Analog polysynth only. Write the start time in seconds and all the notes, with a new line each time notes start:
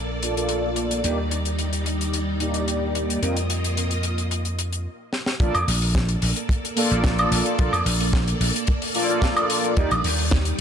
0.22 A#3 F4 A4 D5
0.36 A#3 F4 A4 D5
1.04 A#3 D#4 G4 D5
2.40 A#3 D#4 G4 D5
3.22 C4 F4 A#4 D#5
5.40 A#3 F4 A4 D5
6.76 A#3 F4 A4 D5
7.58 A#3 F4 A4 D5
8.94 A#3 F4 A4 D5
9.08 A#3 F4 A4 D5
9.76 A#3 D#4 G4 D5